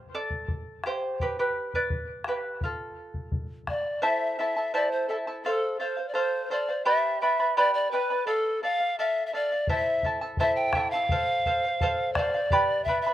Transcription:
0.15 0.81 A4 medium
0.15 0.86 D5 medium
0.30 bombo low soft
0.48 bombo low medium
0.84 1.19 G4 medium
0.84 1.22 C5 medium
0.84 bombo rim soft
1.20 1.37 G4 medium
1.20 1.38 B4 medium
1.20 bombo low medium
1.39 1.72 G4 medium
1.39 1.74 B4 medium
1.74 2.24 B4 medium
1.74 2.29 D5 medium
1.74 bombo low soft
1.90 bombo low medium
2.24 2.60 G4 medium
2.24 bombo rim soft
2.29 2.61 B4 medium
2.61 3.65 F4 medium
2.61 bombo low medium
2.65 3.66 A4 medium
3.14 bombo low soft
3.32 bombo low medium
3.67 4.01 D5 medium
3.67 bombo rim soft
3.67 bombo low soft
4.02 4.38 E4 medium
4.02 4.38 A4 medium
4.02 4.38 C5 medium
4.02 4.38 E5 medium
4.02 4.37 E5 medium
4.02 4.39 A5 medium
4.39 4.57 E4 medium
4.39 4.57 A4 medium
4.39 4.56 E5 medium
4.39 4.76 E5 medium
4.39 4.55 A5 medium
4.57 4.73 E4 soft
4.57 4.73 A4 soft
4.57 4.74 A5 medium
4.74 5.09 E4 medium
4.74 5.09 A4 medium
4.74 5.09 C5 medium
4.74 4.93 D5 medium
4.74 5.08 E5 medium
4.74 5.10 A5 medium
4.92 5.08 C5 medium
5.08 5.27 E4 medium
5.08 5.16 A4 medium
5.08 5.26 A4 medium
5.08 5.27 E5 medium
5.08 5.26 A5 medium
5.27 5.45 E4 soft
5.27 5.44 A4 soft
5.27 5.45 A5 soft
5.45 5.78 A4 medium
5.45 5.79 C5 medium
5.45 5.80 F5 medium
5.80 5.98 A4 medium
5.80 6.06 C5 medium
5.80 5.96 C5 medium
5.80 5.95 F5 medium
5.97 6.13 C5 soft
5.97 6.14 F5 soft
6.08 6.16 D5 medium
6.14 6.49 A4 medium
6.14 6.50 C5 medium
6.14 6.53 C5 medium
6.14 6.51 F5 medium
6.50 6.68 A4 medium
6.50 6.68 C5 medium
6.50 6.85 D5 medium
6.50 6.67 F5 medium
6.69 6.85 C5 soft
6.69 6.85 F5 soft
6.85 7.21 G4 medium
6.85 7.21 B4 medium
6.85 7.21 D5 medium
6.85 7.19 E5 loud
6.85 7.21 G5 medium
6.85 7.22 B5 medium
7.21 7.39 B4 medium
7.21 7.39 D5 medium
7.21 7.54 E5 loud
7.21 7.39 G5 medium
7.21 7.39 B5 medium
7.40 7.56 B4 soft
7.40 7.57 D5 soft
7.40 7.57 B5 medium
7.57 7.92 G4 medium
7.57 7.92 B4 medium
7.57 7.73 D5 medium
7.57 7.92 D5 medium
7.57 7.91 G5 medium
7.57 7.93 B5 medium
7.74 7.91 D5 medium
7.91 8.24 B4 medium
7.91 8.10 B4 medium
7.91 8.10 D5 medium
7.91 8.10 G5 medium
7.91 8.09 B5 medium
8.10 8.26 B4 soft
8.10 8.26 D5 soft
8.10 8.28 B5 soft
8.27 8.60 A4 medium
8.27 8.62 A4 medium
8.27 8.62 D5 medium
8.27 8.63 F5 medium
8.63 8.81 A4 medium
8.63 8.81 D5 medium
8.63 8.96 F5 loud
8.63 8.79 F5 medium
8.80 8.98 D5 soft
8.80 8.98 F5 soft
8.99 9.32 A4 medium
8.99 9.33 D5 medium
8.99 9.26 E5 loud
8.99 9.33 F5 medium
9.26 9.36 E5 medium
9.33 9.51 A4 medium
9.33 9.52 D5 medium
9.33 9.72 D5 medium
9.33 9.51 F5 medium
9.52 9.69 D5 soft
9.52 9.69 F5 soft
9.67 10.04 E4 medium
9.67 10.04 A4 medium
9.67 10.04 C5 medium
9.67 10.03 E5 medium
9.67 10.05 E5 medium
9.67 10.05 A5 medium
9.67 bombo low medium
10.03 10.22 E4 medium
10.03 10.21 A4 medium
10.03 10.22 E5 medium
10.03 10.20 A5 medium
10.03 bombo low soft
10.21 10.39 E4 soft
10.21 10.39 A4 soft
10.21 10.39 A5 medium
10.37 10.75 E4 medium
10.37 10.75 A4 medium
10.37 10.75 C5 medium
10.37 10.55 E5 medium
10.37 10.74 E5 medium
10.37 10.75 A5 medium
10.37 bombo low medium
10.56 10.92 G5 medium
10.73 10.93 E4 medium
10.73 10.93 A4 medium
10.73 10.93 E5 medium
10.73 10.93 A5 medium
10.73 bombo rim medium
10.73 bombo low medium
10.90 12.15 F5 loud
10.90 11.11 A5 soft
10.95 11.11 E4 soft
10.95 11.10 A4 soft
11.09 11.45 A4 medium
11.09 11.46 C5 medium
11.09 11.46 F5 medium
11.09 bombo low medium
11.46 11.64 A4 medium
11.46 11.64 C5 medium
11.46 11.63 F5 medium
11.46 bombo low soft
11.65 11.81 C5 soft
11.65 11.82 F5 medium
11.81 12.16 A4 medium
11.81 12.17 C5 medium
11.81 12.17 F5 medium
11.81 bombo low medium
12.13 12.86 D5 loud
12.13 bombo rim medium
12.13 bombo low medium
12.17 12.35 A4 medium
12.17 12.35 C5 medium
12.17 12.33 F5 medium
12.34 12.51 C5 soft
12.34 12.52 F5 medium
12.50 12.87 G4 medium
12.50 12.87 B4 medium
12.50 12.88 D5 medium
12.50 12.87 G5 medium
12.50 12.88 B5 medium
12.50 bombo low medium
12.84 13.01 E5 medium
12.84 13.05 G5 medium
12.84 bombo low soft
12.88 13.05 B4 medium
12.88 13.06 D5 medium
12.88 13.05 B5 medium
13.01 13.14 E5 medium
13.06 13.14 B4 soft
13.06 13.14 D5 soft
13.06 13.14 B5 medium

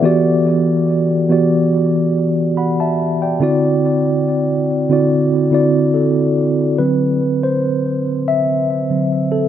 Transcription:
0.00 0.90 E3 loud
0.00 0.90 B3 medium
0.00 0.91 F#4 medium
0.00 0.24 A4 medium
0.04 0.91 G4 medium
0.04 0.92 D5 loud
1.29 2.46 E3 medium
1.29 2.47 B3 medium
1.29 2.47 F#4 medium
1.29 2.48 G4 medium
1.29 2.48 D5 medium
2.57 2.79 F#5 medium
2.57 2.78 B5 medium
2.80 3.20 E5 medium
2.80 3.20 A5 medium
3.22 3.42 D5 medium
3.22 3.62 G5 medium
3.40 4.44 D3 loud
3.40 4.44 C4 medium
3.40 4.45 E4 medium
3.40 4.45 F#4 loud
3.40 4.45 D5 loud
4.89 5.33 D3 medium
4.89 5.34 C4 medium
4.89 5.34 E4 medium
4.89 5.35 F#4 medium
4.89 5.35 D5 medium
5.51 6.39 D3 medium
5.51 6.39 C4 medium
5.51 6.40 E4 medium
5.51 6.40 F#4 medium
5.51 6.41 D5 medium
5.94 6.75 A4 medium
6.79 8.01 D3 medium
6.79 8.02 F#3 medium
6.79 8.02 C4 medium
6.79 7.46 B4 medium
7.43 8.31 C5 medium
8.28 9.35 E5 loud
8.90 9.28 D3 medium
8.90 9.29 F#3 soft
8.90 9.29 C4 medium
9.32 9.48 A4 medium

